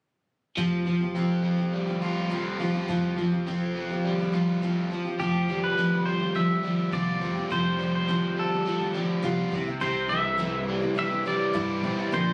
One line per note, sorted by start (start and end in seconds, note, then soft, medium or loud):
0.57 2.85 F1 medium
0.57 0.85 F3 medium
0.57 0.86 C4 medium
0.57 0.87 F4 medium
0.57 0.87 G4 medium
0.86 1.01 F3 medium
0.86 1.01 C4 medium
0.86 1.01 F4 medium
0.86 0.99 G4 medium
1.01 1.15 C4 soft
1.01 1.16 F4 soft
1.01 1.15 G4 medium
1.15 1.59 F3 medium
1.15 1.59 C4 medium
1.15 1.59 F4 medium
1.15 1.57 G4 medium
1.44 2.89 F3 medium
1.59 1.89 C4 soft
1.59 1.88 F4 soft
1.59 1.86 G4 medium
1.73 3.18 G3 medium
1.87 2.02 C4 soft
1.87 2.03 F4 soft
1.87 2.02 G4 medium
2.02 2.29 F3 medium
2.02 2.30 C4 medium
2.02 2.30 F4 medium
2.02 2.31 G4 medium
2.30 2.58 F3 medium
2.30 2.59 C4 medium
2.30 2.60 F4 medium
2.30 2.61 G4 medium
2.59 2.74 F3 medium
2.59 2.75 C4 medium
2.59 2.74 F4 medium
2.59 2.72 G4 medium
2.73 2.88 C4 soft
2.73 2.89 F4 soft
2.73 2.88 G4 medium
2.88 4.87 F1 medium
2.88 3.16 F3 medium
2.88 3.17 C4 medium
2.88 3.18 F4 medium
2.88 3.19 G4 medium
3.17 3.32 F3 medium
3.17 3.33 C4 medium
3.17 3.32 F4 medium
3.17 3.30 G4 medium
3.32 3.46 C4 soft
3.32 3.47 F4 soft
3.32 3.46 G4 medium
3.47 3.90 F3 medium
3.47 3.91 C4 medium
3.47 3.91 F4 medium
3.47 3.89 G4 medium
3.76 4.90 F3 medium
3.90 4.21 C4 soft
3.90 4.20 F4 soft
3.90 4.18 G4 soft
4.05 4.91 G3 medium
4.19 4.32 C4 soft
4.19 4.34 F4 soft
4.19 4.33 G4 medium
4.32 4.61 F3 medium
4.32 4.62 C4 medium
4.32 4.63 F4 medium
4.32 4.63 G4 medium
4.62 4.89 F3 medium
4.62 4.91 C4 medium
4.62 4.92 F4 medium
4.62 4.92 G4 medium
4.91 5.05 F3 medium
4.91 5.06 C4 medium
4.91 5.06 F4 medium
4.91 5.04 G4 medium
5.05 5.19 C4 soft
5.05 5.20 F4 medium
5.05 5.20 G4 medium
5.20 6.19 F1 medium
5.20 5.47 F3 medium
5.20 5.49 C4 medium
5.20 5.49 F4 medium
5.20 5.64 G4 medium
5.20 5.50 G4 medium
5.49 5.77 F3 soft
5.49 6.06 G3 medium
5.49 5.77 C4 medium
5.49 5.78 F4 medium
5.49 5.79 G4 medium
5.64 6.05 B4 medium
5.78 6.21 F3 medium
5.78 6.21 C4 medium
5.78 6.21 F4 medium
5.78 6.19 G4 medium
6.06 6.63 G3 medium
6.06 6.33 C5 medium
6.20 6.35 C4 soft
6.20 6.36 F4 soft
6.20 6.35 G4 soft
6.35 6.49 F3 medium
6.35 6.50 C4 medium
6.35 6.49 F4 medium
6.35 6.48 G4 medium
6.35 6.93 E5 loud
6.49 6.64 C4 soft
6.49 6.65 F4 soft
6.49 6.64 G4 soft
6.63 6.92 F3 medium
6.63 7.79 G3 medium
6.63 6.92 C4 soft
6.63 6.93 F4 medium
6.63 6.94 G4 medium
6.92 7.23 C2 medium
6.92 7.21 F3 medium
6.92 7.22 C4 medium
6.92 7.23 F4 medium
6.92 7.23 G4 medium
6.92 7.47 D5 medium
7.22 7.34 F1 medium
7.22 7.36 F3 medium
7.22 7.37 C4 medium
7.22 7.36 F4 medium
7.22 7.34 G4 medium
7.35 7.50 C4 soft
7.35 7.51 F4 medium
7.35 7.50 G4 soft
7.50 8.50 F1 medium
7.50 7.78 F3 medium
7.50 7.79 C4 medium
7.50 7.80 F4 medium
7.50 7.80 G4 medium
7.50 7.94 C5 medium
7.79 8.07 F3 medium
7.79 8.35 G3 medium
7.79 8.08 C4 medium
7.79 8.09 F4 medium
7.79 8.09 G4 medium
7.95 8.39 C5 medium
8.08 8.51 F3 medium
8.08 8.52 C4 medium
8.08 8.52 F4 medium
8.08 8.50 G4 medium
8.37 8.93 G3 medium
8.37 8.92 A4 medium
8.51 8.66 C4 soft
8.51 8.67 F4 soft
8.51 8.66 G4 soft
8.65 8.80 F3 medium
8.65 8.81 C4 medium
8.65 8.80 F4 medium
8.65 8.78 G4 medium
8.80 8.93 C4 soft
8.80 8.94 F4 soft
8.80 8.94 G4 soft
8.93 9.21 F3 medium
8.93 9.52 G3 medium
8.93 9.22 C4 medium
8.93 9.23 F4 medium
8.93 9.24 G4 medium
9.22 9.36 C2 medium
9.22 9.51 F3 medium
9.22 9.52 C4 medium
9.22 9.53 F4 medium
9.22 9.53 G4 medium
9.51 9.65 C2 medium
9.51 9.81 C3 medium
9.51 9.66 G3 medium
9.51 9.67 C4 medium
9.51 9.66 E4 medium
9.51 9.64 G4 medium
9.65 9.80 C4 soft
9.65 9.81 E4 soft
9.65 9.80 G4 soft
9.80 10.80 C2 medium
9.80 10.10 C3 medium
9.80 10.07 G3 medium
9.80 10.08 C4 medium
9.80 10.09 E4 medium
9.80 10.11 G4 medium
9.80 10.08 C5 medium
10.08 10.38 E3 medium
10.08 10.37 G3 medium
10.08 10.38 C4 soft
10.08 10.38 E4 medium
10.08 10.39 G4 medium
10.08 10.63 E5 medium
10.37 10.82 C3 medium
10.37 10.96 E3 medium
10.37 10.82 G3 medium
10.37 10.82 C4 medium
10.37 10.81 E4 medium
10.37 10.79 G4 medium
10.68 11.25 G3 medium
10.81 10.95 C4 soft
10.81 10.96 E4 soft
10.81 10.96 G4 soft
10.95 12.13 E3 medium
10.95 11.10 G3 medium
10.95 11.11 C4 medium
10.95 11.10 E4 medium
10.95 11.08 G4 medium
10.95 11.27 E5 loud
11.10 11.24 C4 soft
11.10 11.26 E4 soft
11.10 11.25 G4 medium
11.24 11.52 G3 medium
11.24 11.53 C4 medium
11.24 11.54 E4 medium
11.24 11.54 G4 medium
11.24 12.16 D5 medium
11.53 11.85 G2 medium
11.53 11.83 C3 medium
11.53 11.81 G3 medium
11.53 11.82 C4 medium
11.53 11.84 E4 medium
11.53 11.84 G4 medium
11.82 11.96 B1 medium
11.82 11.97 G3 soft
11.82 11.98 C4 medium
11.82 11.97 E4 medium
11.82 11.96 G4 medium
11.97 12.12 C4 soft
11.97 12.13 E4 soft
11.97 12.12 G4 soft
12.11 12.33 A#1 medium
12.11 12.33 A#2 medium
12.11 12.33 D3 medium
12.11 12.33 F3 medium
12.11 12.33 C4 medium
12.11 12.33 D4 medium
12.11 12.33 A#4 medium
12.11 12.33 C5 medium